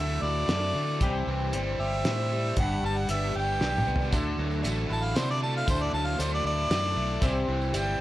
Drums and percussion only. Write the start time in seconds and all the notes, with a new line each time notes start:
0.49 snare, closed hi-hat
1.01 kick, closed hi-hat
1.53 closed hi-hat
2.05 snare, closed hi-hat
2.57 kick, closed hi-hat
3.09 closed hi-hat
3.61 snare
3.78 mid tom
3.96 floor tom
4.12 kick, closed hi-hat, tambourine
4.52 tambourine
4.64 closed hi-hat, tambourine
4.91 tambourine
5.16 snare, closed hi-hat, tambourine
5.68 kick, closed hi-hat, tambourine
6.07 tambourine
6.19 closed hi-hat, tambourine
6.45 tambourine
6.71 snare, closed hi-hat, tambourine
7.22 kick, closed hi-hat, tambourine
7.62 tambourine
7.74 closed hi-hat, tambourine